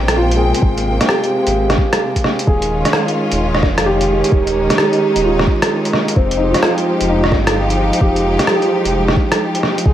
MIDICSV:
0, 0, Header, 1, 5, 480
1, 0, Start_track
1, 0, Key_signature, -4, "minor"
1, 0, Tempo, 461538
1, 652, Time_signature, 4, 2, 24, 8
1, 10331, End_track
2, 0, Start_track
2, 0, Title_t, "Felt piano"
2, 0, Program_c, 0, 0
2, 0, Control_c, 0, 64, 127
2, 0, Note_on_c, 0, 58, 57
2, 0, Note_on_c, 0, 63, 48
2, 170, Note_on_c, 0, 65, 76
2, 378, Note_on_c, 0, 68, 53
2, 823, Note_off_c, 0, 58, 0
2, 1127, Note_on_c, 0, 67, 65
2, 1302, Note_off_c, 0, 65, 0
2, 1461, Note_off_c, 0, 68, 0
2, 2260, Note_off_c, 0, 67, 0
2, 2572, Note_on_c, 0, 68, 73
2, 2586, Control_c, 0, 64, 0
2, 2592, Note_off_c, 0, 63, 0
2, 2766, Control_c, 0, 64, 127
2, 3703, Note_off_c, 0, 68, 0
2, 4014, Note_on_c, 0, 67, 76
2, 4960, Note_off_c, 0, 67, 0
2, 4976, Note_on_c, 0, 67, 54
2, 5450, Note_on_c, 0, 65, 57
2, 6105, Note_off_c, 0, 67, 0
2, 6413, Note_on_c, 0, 60, 66
2, 6427, Control_c, 0, 64, 0
2, 6582, Note_off_c, 0, 65, 0
2, 6606, Control_c, 0, 64, 127
2, 6623, Note_on_c, 0, 63, 56
2, 6758, Note_on_c, 0, 65, 53
2, 6881, Note_off_c, 0, 65, 0
2, 6896, Note_on_c, 0, 65, 71
2, 7359, Note_off_c, 0, 63, 0
2, 7375, Note_on_c, 0, 63, 63
2, 7544, Note_off_c, 0, 60, 0
2, 8025, Note_off_c, 0, 65, 0
2, 8331, Note_on_c, 0, 67, 70
2, 8504, Note_off_c, 0, 63, 0
2, 9462, Note_off_c, 0, 67, 0
2, 10254, Note_on_c, 0, 68, 56
2, 10267, Control_c, 0, 64, 0
2, 10331, Note_off_c, 0, 68, 0
2, 10331, End_track
3, 0, Start_track
3, 0, Title_t, "String section"
3, 0, Program_c, 1, 48
3, 0, Note_on_c, 1, 48, 80
3, 0, Note_on_c, 1, 56, 70
3, 0, Note_on_c, 1, 58, 68
3, 0, Note_on_c, 1, 79, 81
3, 2533, Note_off_c, 1, 58, 0
3, 2534, Note_off_c, 1, 48, 0
3, 2534, Note_off_c, 1, 79, 0
3, 2581, Note_on_c, 1, 65, 84
3, 2582, Note_on_c, 1, 61, 70
3, 2587, Note_on_c, 1, 51, 76
3, 4478, Note_off_c, 1, 65, 0
3, 4495, Note_on_c, 1, 63, 86
3, 6379, Note_off_c, 1, 61, 0
3, 6381, Note_off_c, 1, 51, 0
3, 6394, Note_off_c, 1, 63, 0
3, 6417, Note_on_c, 1, 53, 80
3, 6417, Note_on_c, 1, 67, 85
3, 6418, Note_on_c, 1, 63, 71
3, 10211, Note_off_c, 1, 56, 0
3, 10216, Note_off_c, 1, 53, 0
3, 10216, Note_off_c, 1, 67, 0
3, 10217, Note_off_c, 1, 63, 0
3, 10257, Note_on_c, 1, 63, 69
3, 10259, Note_on_c, 1, 49, 77
3, 10260, Note_on_c, 1, 65, 87
3, 10261, Note_on_c, 1, 60, 71
3, 10331, Note_off_c, 1, 49, 0
3, 10331, Note_off_c, 1, 60, 0
3, 10331, Note_off_c, 1, 63, 0
3, 10331, Note_off_c, 1, 65, 0
3, 10331, End_track
4, 0, Start_track
4, 0, Title_t, "Detuned saw bass"
4, 0, Program_c, 2, 39
4, 0, Note_on_c, 2, 34, 96
4, 545, Note_off_c, 2, 34, 0
4, 650, Note_on_c, 2, 32, 99
4, 1026, Note_off_c, 2, 32, 0
4, 1529, Note_on_c, 2, 32, 79
4, 1842, Note_off_c, 2, 32, 0
4, 2569, Note_on_c, 2, 27, 99
4, 2945, Note_off_c, 2, 27, 0
4, 3453, Note_on_c, 2, 27, 79
4, 3773, Note_on_c, 2, 29, 94
4, 3789, Note_off_c, 2, 27, 0
4, 4387, Note_off_c, 2, 29, 0
4, 4492, Note_on_c, 2, 27, 99
4, 4867, Note_off_c, 2, 27, 0
4, 5365, Note_on_c, 2, 27, 78
4, 5680, Note_off_c, 2, 27, 0
4, 6410, Note_on_c, 2, 29, 100
4, 6786, Note_off_c, 2, 29, 0
4, 7291, Note_on_c, 2, 29, 82
4, 7609, Note_on_c, 2, 31, 93
4, 7625, Note_off_c, 2, 29, 0
4, 8225, Note_off_c, 2, 31, 0
4, 8331, Note_on_c, 2, 29, 98
4, 8706, Note_off_c, 2, 29, 0
4, 9206, Note_on_c, 2, 29, 80
4, 9520, Note_off_c, 2, 29, 0
4, 10249, Note_on_c, 2, 37, 104
4, 10331, Note_off_c, 2, 37, 0
4, 10331, End_track
5, 0, Start_track
5, 0, Title_t, "Drums"
5, 86, Note_on_c, 9, 37, 97
5, 86, Note_on_c, 9, 42, 52
5, 190, Note_off_c, 9, 37, 0
5, 190, Note_off_c, 9, 42, 0
5, 327, Note_on_c, 9, 42, 41
5, 431, Note_off_c, 9, 42, 0
5, 566, Note_on_c, 9, 42, 52
5, 648, Note_on_c, 9, 36, 112
5, 670, Note_off_c, 9, 42, 0
5, 752, Note_off_c, 9, 36, 0
5, 807, Note_on_c, 9, 42, 41
5, 911, Note_off_c, 9, 42, 0
5, 1047, Note_on_c, 9, 37, 63
5, 1047, Note_on_c, 9, 42, 51
5, 1130, Note_off_c, 9, 37, 0
5, 1130, Note_on_c, 9, 37, 98
5, 1151, Note_off_c, 9, 42, 0
5, 1234, Note_off_c, 9, 37, 0
5, 1286, Note_on_c, 9, 42, 28
5, 1390, Note_off_c, 9, 42, 0
5, 1525, Note_on_c, 9, 42, 54
5, 1629, Note_off_c, 9, 42, 0
5, 1766, Note_on_c, 9, 37, 61
5, 1766, Note_on_c, 9, 42, 30
5, 1850, Note_on_c, 9, 36, 92
5, 1870, Note_off_c, 9, 37, 0
5, 1870, Note_off_c, 9, 42, 0
5, 1954, Note_off_c, 9, 36, 0
5, 2004, Note_on_c, 9, 37, 99
5, 2004, Note_on_c, 9, 42, 57
5, 2108, Note_off_c, 9, 37, 0
5, 2108, Note_off_c, 9, 42, 0
5, 2245, Note_on_c, 9, 36, 55
5, 2247, Note_on_c, 9, 42, 44
5, 2332, Note_on_c, 9, 37, 52
5, 2349, Note_off_c, 9, 36, 0
5, 2351, Note_off_c, 9, 42, 0
5, 2436, Note_off_c, 9, 37, 0
5, 2487, Note_on_c, 9, 42, 55
5, 2571, Note_on_c, 9, 36, 113
5, 2591, Note_off_c, 9, 42, 0
5, 2675, Note_off_c, 9, 36, 0
5, 2725, Note_on_c, 9, 42, 42
5, 2829, Note_off_c, 9, 42, 0
5, 2966, Note_on_c, 9, 37, 61
5, 2966, Note_on_c, 9, 42, 52
5, 3049, Note_off_c, 9, 37, 0
5, 3049, Note_on_c, 9, 37, 97
5, 3070, Note_off_c, 9, 42, 0
5, 3153, Note_off_c, 9, 37, 0
5, 3207, Note_on_c, 9, 42, 31
5, 3311, Note_off_c, 9, 42, 0
5, 3448, Note_on_c, 9, 42, 57
5, 3552, Note_off_c, 9, 42, 0
5, 3687, Note_on_c, 9, 37, 57
5, 3773, Note_off_c, 9, 37, 0
5, 3773, Note_on_c, 9, 36, 96
5, 3773, Note_on_c, 9, 37, 36
5, 3877, Note_off_c, 9, 36, 0
5, 3877, Note_off_c, 9, 37, 0
5, 3928, Note_on_c, 9, 37, 100
5, 3928, Note_on_c, 9, 42, 56
5, 4032, Note_off_c, 9, 37, 0
5, 4032, Note_off_c, 9, 42, 0
5, 4168, Note_on_c, 9, 42, 44
5, 4272, Note_off_c, 9, 42, 0
5, 4411, Note_on_c, 9, 42, 57
5, 4493, Note_on_c, 9, 36, 120
5, 4515, Note_off_c, 9, 42, 0
5, 4597, Note_off_c, 9, 36, 0
5, 4650, Note_on_c, 9, 42, 42
5, 4754, Note_off_c, 9, 42, 0
5, 4890, Note_on_c, 9, 37, 61
5, 4890, Note_on_c, 9, 42, 56
5, 4973, Note_off_c, 9, 37, 0
5, 4973, Note_on_c, 9, 37, 103
5, 4994, Note_off_c, 9, 42, 0
5, 5077, Note_off_c, 9, 37, 0
5, 5127, Note_on_c, 9, 42, 31
5, 5231, Note_off_c, 9, 42, 0
5, 5365, Note_on_c, 9, 42, 55
5, 5469, Note_off_c, 9, 42, 0
5, 5609, Note_on_c, 9, 37, 58
5, 5689, Note_on_c, 9, 36, 100
5, 5713, Note_off_c, 9, 37, 0
5, 5793, Note_off_c, 9, 36, 0
5, 5847, Note_on_c, 9, 37, 106
5, 5847, Note_on_c, 9, 42, 58
5, 5951, Note_off_c, 9, 37, 0
5, 5951, Note_off_c, 9, 42, 0
5, 6087, Note_on_c, 9, 42, 42
5, 6171, Note_on_c, 9, 37, 50
5, 6191, Note_off_c, 9, 42, 0
5, 6275, Note_off_c, 9, 37, 0
5, 6326, Note_on_c, 9, 42, 57
5, 6408, Note_on_c, 9, 36, 122
5, 6430, Note_off_c, 9, 42, 0
5, 6512, Note_off_c, 9, 36, 0
5, 6564, Note_on_c, 9, 42, 41
5, 6668, Note_off_c, 9, 42, 0
5, 6806, Note_on_c, 9, 37, 59
5, 6806, Note_on_c, 9, 42, 53
5, 6891, Note_off_c, 9, 37, 0
5, 6891, Note_on_c, 9, 37, 107
5, 6910, Note_off_c, 9, 42, 0
5, 6995, Note_off_c, 9, 37, 0
5, 7049, Note_on_c, 9, 42, 31
5, 7153, Note_off_c, 9, 42, 0
5, 7286, Note_on_c, 9, 42, 52
5, 7390, Note_off_c, 9, 42, 0
5, 7526, Note_on_c, 9, 37, 54
5, 7610, Note_on_c, 9, 36, 102
5, 7612, Note_off_c, 9, 37, 0
5, 7612, Note_on_c, 9, 37, 33
5, 7714, Note_off_c, 9, 36, 0
5, 7716, Note_off_c, 9, 37, 0
5, 7769, Note_on_c, 9, 37, 108
5, 7769, Note_on_c, 9, 42, 54
5, 7873, Note_off_c, 9, 37, 0
5, 7873, Note_off_c, 9, 42, 0
5, 8010, Note_on_c, 9, 42, 45
5, 8114, Note_off_c, 9, 42, 0
5, 8250, Note_on_c, 9, 42, 56
5, 8331, Note_on_c, 9, 36, 121
5, 8354, Note_off_c, 9, 42, 0
5, 8435, Note_off_c, 9, 36, 0
5, 8490, Note_on_c, 9, 42, 39
5, 8594, Note_off_c, 9, 42, 0
5, 8729, Note_on_c, 9, 37, 57
5, 8729, Note_on_c, 9, 42, 51
5, 8812, Note_off_c, 9, 37, 0
5, 8812, Note_on_c, 9, 37, 105
5, 8833, Note_off_c, 9, 42, 0
5, 8916, Note_off_c, 9, 37, 0
5, 8967, Note_on_c, 9, 42, 29
5, 9071, Note_off_c, 9, 42, 0
5, 9209, Note_on_c, 9, 42, 50
5, 9313, Note_off_c, 9, 42, 0
5, 9447, Note_on_c, 9, 37, 54
5, 9530, Note_on_c, 9, 36, 102
5, 9551, Note_off_c, 9, 37, 0
5, 9634, Note_off_c, 9, 36, 0
5, 9689, Note_on_c, 9, 37, 106
5, 9689, Note_on_c, 9, 42, 56
5, 9793, Note_off_c, 9, 37, 0
5, 9793, Note_off_c, 9, 42, 0
5, 9930, Note_on_c, 9, 42, 41
5, 10017, Note_on_c, 9, 37, 48
5, 10034, Note_off_c, 9, 42, 0
5, 10121, Note_off_c, 9, 37, 0
5, 10172, Note_on_c, 9, 42, 52
5, 10250, Note_on_c, 9, 36, 122
5, 10276, Note_off_c, 9, 42, 0
5, 10331, Note_off_c, 9, 36, 0
5, 10331, End_track
0, 0, End_of_file